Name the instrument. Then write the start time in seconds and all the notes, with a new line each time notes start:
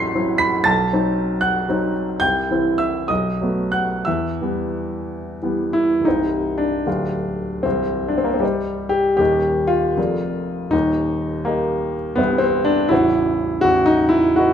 grand piano
Already playing: A1 F#3 C4 E4 A5 B5 C6 A6 B6 C7
0.15 F#3 C4 E4
0.38 B5 B6
0.64 B1 A5 A6
0.93 F#3 C4 D#4
1.41 F#5 F#6
1.69 F#3 C4 D#4
2.20 C2 G5 G6
2.51 E3 C4 E4
2.78 E5 E6
3.08 B1 D#5 D#6
3.41 F#3 A3 B3
3.72 F#5 F#6
4.05 E2 E5 E6
4.41 E3 G3 B3
5.42 E3 G3 B3
5.73 E4
6.00 C1
6.05 C2 D#4 G4 C5 D#5
6.58 D4
6.87 D1 D2 G4 B4 F5
7.63 C1 C2 C4
8.08 D4
8.18 C4
8.24 A#3
8.34 C4
8.40 G3 G4 C5 D#5
8.89 G4
9.17 D#1 D#2 G4 A#4 D#5
9.67 F4
9.97 F1 F2 G#4 A#4 D5
10.70 D#1 D#2 D#4
11.45 A#3 G4 A#4 D#5
12.16 C1 C2 B3 G4 C5 E5
12.38 C4
12.65 D4
12.89 A0 A1 E4 F#4 C5 F#5
13.61 A0 A1 F#4
13.86 D#4
14.09 E4
14.36 F#4 B4 D#5